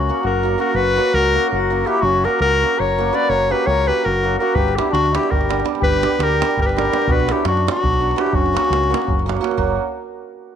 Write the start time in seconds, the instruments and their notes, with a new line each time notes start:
Already playing: trumpet C#4, clarinet F#4
0.09 hammered dulcimer F#3 A#3 C#4 F#4
0.23 fingered electric bass F#1, trumpet F#4, clarinet A#4
0.43 hammered dulcimer F#3 A#3 C#4 F#4
0.58 hammered dulcimer F#3 A#3 C#4 F#4, trumpet F#4, clarinet A#4
0.74 fingered electric bass F#1, trumpet F#4, clarinet B4
0.97 hammered dulcimer F#3 A#3 C#4 F#4
1.14 fingered electric bass C#2, trumpet F#4, clarinet A#4
1.34 hammered dulcimer F#3 A#3 C#4 F#4
1.50 fingered electric bass F#1, trumpet F#4, clarinet A#4
1.70 hammered dulcimer F#3 A#3 C#4 F#4
1.85 hammered dulcimer F#3 A#3 C#4 F#4, trumpet E4, clarinet G4
2.01 fingered electric bass F#1, trumpet C#4, clarinet F#4
2.24 hammered dulcimer F#3 A#3 C#4 F#4, trumpet F#4, clarinet A#4
2.40 fingered electric bass C#2, trumpet F#4, clarinet A#4
2.62 hammered dulcimer F#3 A#3 C#4 F#4
2.78 fingered electric bass F#1, trumpet A#4, clarinet C#5
2.98 hammered dulcimer F#3 A#3 C#4 F#4
3.13 hammered dulcimer F#3 A#3 C#4 F#4, trumpet B4, clarinet D5
3.29 fingered electric bass F#1, trumpet A#4, clarinet C#5
3.49 hammered dulcimer F#3 A#3 C#4 F#4, trumpet G4, clarinet B4
3.66 fingered electric bass C#2, trumpet A#4, clarinet C#5
3.87 hammered dulcimer F#3 A#3 C#4 F#4, trumpet G4, clarinet B4
4.05 fingered electric bass F#1, trumpet F#4, clarinet A#4
4.23 hammered dulcimer F#3 A#3 C#4 F#4
4.39 hammered dulcimer F#3 A#3 C#4 F#4, trumpet F#4, clarinet A#4
4.54 fingered electric bass G1, trumpet G4, clarinet B4, davul low
4.68 davul high
4.76 hammered dulcimer G3 B3 D4 G4, trumpet E4, clarinet G4, davul high
4.91 fingered electric bass D2, trumpet D4, clarinet F#4, davul high
5.06 davul high
5.13 hammered dulcimer G3 B3 D4 G4, trumpet E4, clarinet G4, davul high
5.23 davul high
5.31 fingered electric bass G1, trumpet G4, clarinet A#4, davul low
5.41 davul high
5.49 hammered dulcimer G3 B3 D4 G4, davul high
5.60 davul high
5.65 hammered dulcimer G3 B3 D4 G4, davul high
5.75 davul high
5.81 fingered electric bass G1, trumpet G4, clarinet B4, davul low
5.93 davul high
6.02 hammered dulcimer G3 B3 D4 G4, davul high
6.19 fingered electric bass D2, trumpet G4, davul high
6.23 clarinet A#4
6.32 davul high
6.41 hammered dulcimer G3 B3 D4 G4, davul high
6.51 davul high
6.57 fingered electric bass G1, trumpet G4, davul low
6.61 trumpet G4, clarinet A#4
6.66 clarinet B4, davul high
6.73 hammered dulcimer G3 B3, trumpet G4
6.77 hammered dulcimer D4 G4, clarinet A#4, davul high
6.85 davul high
6.92 hammered dulcimer G3 B3 D4 G4, davul high
7.02 davul high
7.07 fingered electric bass B1, trumpet F#4, davul low
7.11 clarinet B4
7.20 davul high
7.29 hammered dulcimer F#3 B3 D4 F#4, clarinet G4, davul high
7.33 trumpet E4
7.45 fingered electric bass F#2, trumpet D4, clarinet F#4, davul high
7.57 davul high
7.67 hammered dulcimer F#3 B3 D4 F#4, trumpet D4, davul high
7.71 clarinet F#4
7.77 davul high
7.83 fingered electric bass B1, davul low
7.94 davul high
8.00 hammered dulcimer F#3 B3 D4 F#4
8.11 davul high
8.16 hammered dulcimer F#3 B3 D4 F#4, trumpet E4, clarinet G4, davul high
8.26 davul high
8.33 fingered electric bass F#1, trumpet C#4, clarinet F#4, davul low
8.46 davul high
8.53 hammered dulcimer F#3 A#3 C#4 F#4, davul high
8.65 davul high
8.70 fingered electric bass C#2, davul high
8.83 davul high
8.90 hammered dulcimer F#3 A#3 C#4 F#4
8.94 davul high
9.02 davul high
9.08 fingered electric bass F#1, davul low
9.19 davul high
9.26 hammered dulcimer F#3 A#3 C#4 F#4, davul high
9.37 davul high
9.41 hammered dulcimer F#3 A#3 C#4 F#4, davul high
9.51 davul high
9.57 fingered electric bass F#1, hammered dulcimer F#3 A#3 C#4 F#4, davul low